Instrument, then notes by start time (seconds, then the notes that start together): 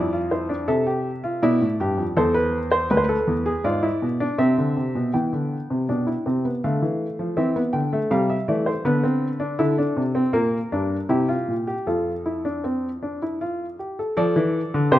grand piano
Already playing: F2 E4 D5
0.13 F4
0.31 E4 C5
0.49 D4
0.68 C3 A4 E5
0.87 G4
1.24 F4
1.42 B2 E4 D5
1.61 A2
1.80 G2 G4
1.98 F2
2.17 E2 A4 C5
2.34 B4
2.72 C5
2.91 D2 B4
2.97 C5
3.04 B4
3.09 A4
3.27 E2
3.46 G#4
3.64 G#2 F4 D5
3.83 E4
4.02 B2
4.20 D4
4.38 C3 C4 E5
4.58 D3
4.77 C3
4.95 B2
5.14 E3 B3 G5
5.33 D3
5.70 C3
5.89 B2 D4
6.07 E4
6.26 C3 C4
6.45 B3
6.64 D3 A3 F5
6.82 E3
7.19 F3
7.37 E3 C4 E5
7.56 B3
7.73 D3 G5
7.93 A3
8.11 C3 G3 F5
8.30 E5
8.48 E3 A3 D5
8.66 C5
8.85 D3 B3 B4
9.04 C4
9.40 D4
9.59 D3 E4 A4
9.78 D4
9.97 C3
10.15 C4
10.33 A#2 A#3 A#4
10.72 G2 D4
11.09 C3 E4 G4
11.29 F4
11.48 A#2
11.67 G4
11.87 F2 F4 A4
12.26 E4
12.45 D4
12.64 C4
13.03 D4
13.22 E4
13.41 F4
13.79 G4
13.99 A4
14.17 F3 A4 D5
14.36 E3
14.74 D3
14.92 C3 G4 C5